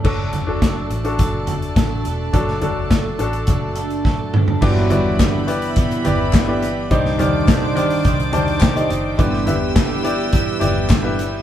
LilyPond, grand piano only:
<<
  \new Staff \with { instrumentName = "Grand piano" } { \time 4/4 \key g \major \tempo 4 = 105 <d' fis' a'>8 r16 <d' fis' a'>8. r16 <d' fis' a'>4. r8. | <d' fis' a'>16 r16 <d' fis' a'>8. r16 <d' fis' a'>4. r4 | <e' g' b' d''>16 r16 <g e' b' d''>8. r16 <e' g' b' d''>8. r16 <e' g' b' d''>8 r16 <e' g' b' d''>8 r16 | <ees' g' c'' d''>16 r16 <ees g' c'' d''>8. r16 <ees g' c'' d''>8. r16 <ees g' c'' d''>8 r16 <ees' g' c'' d''>8 r16 |
<e' g' b' d''>16 r16 <e' g' b' e''>8. r16 <e' g' b' d''>8. r16 <e' g' b' d''>8 r16 <e' g' b' e''>8 r16 | }
  \new Staff \with { instrumentName = "Grand piano" } { \clef bass \time 4/4 \key g \major fis4. r2 r8 | fis4. r2 r8 | <g, d>4. r2 r8 | g,4. r4 a''8 g''8 ees''8 |
<g, d>4. r2 r8 | }
>>